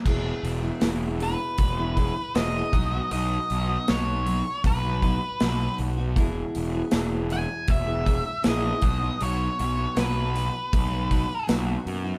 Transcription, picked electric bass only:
X:1
M:4/4
L:1/8
Q:1/4=79
K:E
V:1 name="Picked electric bass" clef=bass
E,,, E,,, E,,,2 E,,,2 E,,, B,,, | B,,, B,,, B,,,2 B,,,2 B,,, B,,, | E,,, E,,, E,,,2 E,,,2 ^A,,, B,,, | B,,, B,,, B,,,2 B,,,2 B,,, F,, |]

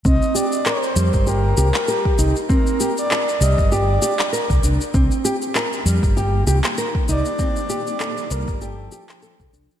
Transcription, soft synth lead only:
X:1
M:4/4
L:1/16
Q:"Swing 16ths" 1/4=98
K:Cdor
V:1 name="Soft synth lead"
e2 d2 c4 B4 G3 z | B3 d3 e2 d6 z2 | z12 z2 d2- | d6 B2 A6 z2 |]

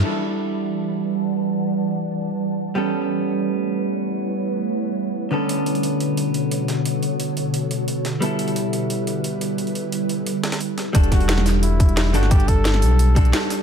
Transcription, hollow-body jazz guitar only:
X:1
M:4/4
L:1/8
Q:1/4=176
K:Edor
V:1 name="Hollow-body jazz guitar"
[G,DEFA]8- | [G,DEFA]8 | [G,B,CA]8- | [G,B,CA]6- [G,B,CA] [D,B,CA]- |
[D,B,CA]8- | [D,B,CA]6- [D,B,CA] z | [G,B,EA]8- | [G,B,EA]8 |
[G,DFA]6- [G,DFA] [G,DFA] | [G,DFA]4- [G,DFA] [G,DFA]3 |]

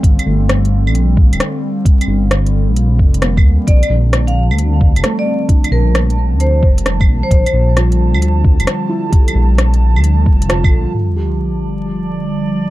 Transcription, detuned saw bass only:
X:1
M:4/4
L:1/16
Q:"Swing 16ths" 1/4=132
K:Gdor
V:1 name="Detuned saw bass" clef=bass
G,,, z G,,,4- G,,, B,,,4 D,,, z4 | z2 G,,,4- G,,, B,,,3 F,,,4 D,, z | B,,, z B,,,4- B,,, D,,4 F,,, z4 | z2 B,,,4- B,,, D,,3 F,,,4 B,,, z |
B,,, z B,,,4- B,,, D,,4 F,,, z4 | z2 B,,,4- B,,, D,,3 F,,,4 B,,, z | z16 |]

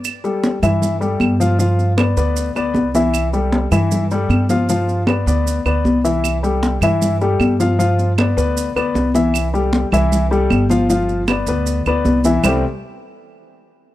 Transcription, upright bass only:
X:1
M:4/4
L:1/8
Q:1/4=155
K:C
V:1 name="Upright bass" clef=bass
z3 G,,3 G,,2- | G,,3 D,,2 D,, C,,2- | C,,3 G,,3 G,,2- | G,,3 D,,2 D,, C,,2- |
C,,3 G,,3 G,,2- | G,,3 D,,2 D,, C,,2- | C,,3 C,,3 G,,,2- | G,,,3 D,,2 D,, C,,2 |
C,, z6 z |]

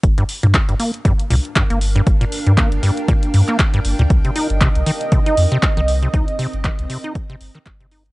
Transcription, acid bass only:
X:1
M:4/4
L:1/16
Q:"Swing 16ths" 1/4=118
K:Gm
V:1 name="Acid bass" clef=bass
z G,, z B,, z G,, B, z G,, z B,, z G,, B, z G,, | z B,, z G,, B, z G,, z B,, z G,, B, z G,, z B,, | z C, E z C, z E, z C, E z C, z E, z C, | E z C, z E, z C, E z C, z E, z C, E z |]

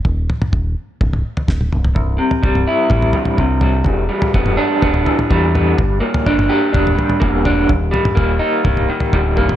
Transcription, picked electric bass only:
X:1
M:4/4
L:1/8
Q:1/4=126
K:G
V:1 name="Picked electric bass" clef=bass
_E,,, z E,,, z C,,, z D,,, C,,, | C,,, z C,,, z A,,, z C,,2 | E,,, z E,,, z D,,, z E,,2 | G,,, z G,,, z E,,, z E,,,2 |
_E,,, z E,,, z C,,, z D,,, C,,, |]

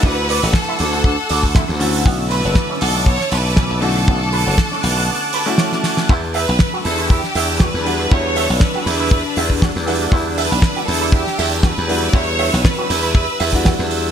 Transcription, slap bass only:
X:1
M:4/4
L:1/16
Q:"Swing 16ths" 1/4=119
K:Edor
V:1 name="Slap bass" clef=bass
D,,3 A,,, z2 D,,3 z D,,3 D,,3 | B,,,3 F,,, z2 B,,,3 z B,,,3 B,,,3 | B,,,3 F,,, z2 B,,,2 z8 | E,,3 B,,, z2 E,,3 z E,,3 E,,3 |
E,,3 B,,, z2 E,,3 z E,,3 E,,3 | E,,3 B,,, z2 E,,3 z E,,3 E,,3 | E,,3 B,,, z2 E,,3 z E,,3 E,,3 |]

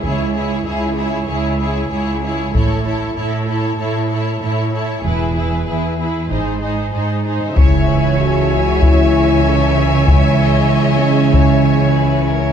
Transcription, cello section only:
X:1
M:4/4
L:1/8
Q:1/4=96
K:C#m
V:1 name="Cello section" clef=bass
C,,2 C,,2 C,,2 C,,2 | A,,2 A,,2 A,,2 A,,2 | E,,2 E,,2 G,,2 G,,2 | C,8- |
C,8 |]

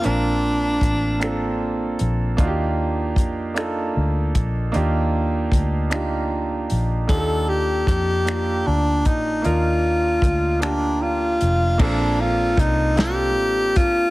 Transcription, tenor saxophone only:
X:1
M:6/8
L:1/8
Q:3/8=51
K:Eblyd
V:1 name="Tenor saxophone"
D4 z2 | z6 | z6 | A G G2 D E |
F3 D F2 | D F E G2 F |]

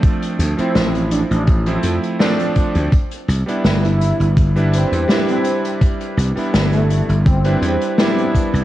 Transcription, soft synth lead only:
X:1
M:4/4
L:1/16
Q:"Swing 16ths" 1/4=83
K:C
V:1 name="Soft synth lead"
z3 C2 z D D z8 | z4 z E2 z3 C2 z C2 z | z4 z A,2 z C6 z2 |]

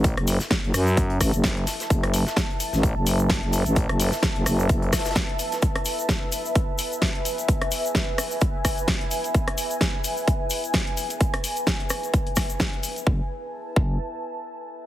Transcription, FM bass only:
X:1
M:4/4
L:1/16
Q:"Swing 16ths" 1/4=129
K:F#m
V:1 name="FM bass" clef=bass
A,,, F,,,2 z2 F,,, F,,4 A,,, F,,,3 z2 | F,,,3 z4 A,,,2 F,,,4 F,,,2 A,,,- | A,,, F,,,2 z2 F,,, F,,,2 F,,,2 z6 | z16 |
z16 | z16 | z16 | F,,, z4 z F,,,2 z8 |]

